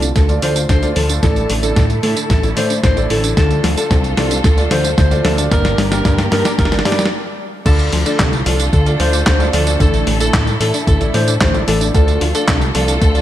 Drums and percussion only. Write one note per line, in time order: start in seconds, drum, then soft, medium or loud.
0.02 closed hi-hat soft
0.02 tambourine medium
0.16 kick loud
0.16 snare medium
0.16 closed hi-hat medium
0.16 tambourine soft
0.29 closed hi-hat soft
0.29 tambourine soft
0.42 open hi-hat loud
0.56 closed hi-hat soft
0.56 tambourine medium
0.69 kick loud
0.69 snare medium
0.69 closed hi-hat medium
0.69 tambourine soft
0.83 closed hi-hat soft
0.83 tambourine soft
0.96 open hi-hat loud
1.09 closed hi-hat soft
1.09 tambourine medium
1.23 kick loud
1.23 snare medium
1.23 closed hi-hat medium
1.23 tambourine soft
1.36 closed hi-hat soft
1.36 tambourine soft
1.50 open hi-hat loud
1.63 closed hi-hat soft
1.63 tambourine medium
1.76 kick loud
1.76 snare medium
1.76 closed hi-hat medium
1.76 tambourine soft
1.90 closed hi-hat soft
1.90 tambourine soft
2.03 open hi-hat loud
2.17 closed hi-hat soft
2.17 tambourine medium
2.30 kick loud
2.30 snare medium
2.30 closed hi-hat medium
2.30 tambourine soft
2.43 closed hi-hat soft
2.43 tambourine soft
2.57 open hi-hat loud
2.70 closed hi-hat soft
2.70 tambourine medium
2.84 kick loud
2.84 snare medium
2.84 closed hi-hat medium
2.84 tambourine soft
2.97 closed hi-hat soft
2.97 tambourine soft
3.10 open hi-hat loud
3.24 closed hi-hat soft
3.24 tambourine medium
3.37 kick loud
3.37 snare medium
3.37 closed hi-hat medium
3.37 tambourine soft
3.51 closed hi-hat soft
3.51 tambourine soft
3.64 snare medium
3.64 open hi-hat loud
3.77 closed hi-hat soft
3.77 tambourine medium
3.91 kick loud
3.91 snare medium
3.91 closed hi-hat medium
3.91 tambourine soft
4.04 closed hi-hat soft
4.04 tambourine soft
4.17 snare medium
4.17 open hi-hat loud
4.31 closed hi-hat soft
4.31 tambourine medium
4.44 kick loud
4.44 snare medium
4.44 closed hi-hat medium
4.44 tambourine soft
4.58 closed hi-hat soft
4.58 tambourine soft
4.71 snare medium
4.71 open hi-hat loud
4.84 closed hi-hat soft
4.84 tambourine medium
4.98 kick loud
4.98 snare medium
4.98 closed hi-hat medium
4.98 tambourine soft
5.11 closed hi-hat soft
5.11 tambourine soft
5.25 snare medium
5.25 open hi-hat loud
5.38 closed hi-hat soft
5.38 tambourine medium
5.51 kick loud
5.51 snare medium
5.51 closed hi-hat medium
5.51 tambourine medium
5.65 snare medium
5.65 closed hi-hat soft
5.65 tambourine soft
5.78 snare medium
5.78 open hi-hat loud
5.92 snare medium
5.92 closed hi-hat soft
5.92 tambourine medium
6.05 kick loud
6.05 snare loud
6.05 closed hi-hat medium
6.05 tambourine medium
6.18 snare medium
6.18 closed hi-hat soft
6.18 tambourine soft
6.32 snare loud
6.32 open hi-hat loud
6.45 snare medium
6.45 closed hi-hat soft
6.45 tambourine medium
6.59 kick loud
6.59 snare loud
6.59 closed hi-hat medium
6.59 tambourine soft
6.65 snare medium
6.72 snare medium
6.72 closed hi-hat soft
6.72 tambourine soft
6.79 snare medium
6.85 snare loud
6.85 open hi-hat loud
6.92 snare medium
6.99 snare medium
6.99 closed hi-hat soft
6.99 tambourine medium
7.06 snare loud
7.66 kick loud
7.66 closed hi-hat medium
7.66 crash loud
7.66 tambourine soft
7.79 closed hi-hat soft
7.79 tambourine soft
7.93 open hi-hat loud
8.06 closed hi-hat soft
8.06 tambourine medium
8.19 kick loud
8.19 snare loud
8.19 clap loud
8.19 closed hi-hat medium
8.19 tambourine soft
8.33 closed hi-hat soft
8.33 tambourine soft
8.46 open hi-hat loud
8.60 closed hi-hat soft
8.60 tambourine medium
8.73 kick loud
8.73 closed hi-hat medium
8.73 tambourine soft
8.86 closed hi-hat soft
8.86 tambourine soft
9.00 open hi-hat loud
9.13 closed hi-hat soft
9.13 tambourine medium
9.26 kick loud
9.26 snare loud
9.26 clap loud
9.26 closed hi-hat medium
9.26 tambourine soft
9.40 closed hi-hat soft
9.40 tambourine soft
9.53 open hi-hat loud
9.67 closed hi-hat soft
9.67 tambourine medium
9.80 kick loud
9.80 closed hi-hat medium
9.80 tambourine soft
9.94 closed hi-hat soft
9.94 tambourine soft
10.07 open hi-hat loud
10.20 closed hi-hat soft
10.20 tambourine medium
10.34 kick loud
10.34 snare loud
10.34 clap loud
10.34 closed hi-hat medium
10.34 tambourine soft
10.47 closed hi-hat soft
10.47 tambourine soft
10.61 open hi-hat loud
10.74 closed hi-hat soft
10.74 tambourine medium
10.87 kick loud
10.87 closed hi-hat medium
10.87 tambourine medium
11.01 closed hi-hat soft
11.01 tambourine soft
11.14 open hi-hat loud
11.28 closed hi-hat soft
11.28 tambourine medium
11.41 kick loud
11.41 snare loud
11.41 clap medium
11.41 closed hi-hat medium
11.41 tambourine soft
11.54 closed hi-hat soft
11.54 tambourine soft
11.68 open hi-hat loud
11.81 closed hi-hat soft
11.81 tambourine medium
11.95 kick loud
11.95 closed hi-hat medium
11.95 tambourine medium
12.08 closed hi-hat soft
12.08 tambourine soft
12.21 open hi-hat loud
12.35 closed hi-hat soft
12.35 tambourine medium
12.48 kick loud
12.48 snare loud
12.48 clap medium
12.48 closed hi-hat medium
12.48 tambourine medium
12.61 closed hi-hat soft
12.61 tambourine soft
12.75 open hi-hat loud
12.88 closed hi-hat soft
12.88 tambourine medium
13.02 kick loud
13.02 closed hi-hat medium
13.02 tambourine soft
13.15 closed hi-hat soft
13.15 tambourine soft